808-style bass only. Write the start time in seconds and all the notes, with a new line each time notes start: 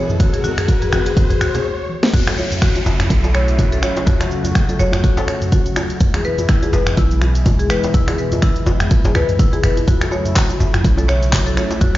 0.20 F#1
0.93 F#1
1.30 F#1
1.41 C#2
2.14 F#1
2.86 F#1
3.10 B1
3.83 A1
4.07 F#1
4.79 F#1
6.01 F#1
6.73 F#1
6.97 B1
7.70 F#1
7.94 F#1
8.67 F#1
9.05 F#1
9.15 C#2
9.64 F#1
9.88 F#1
10.60 F#1
10.85 B1
11.57 A1
11.81 F#1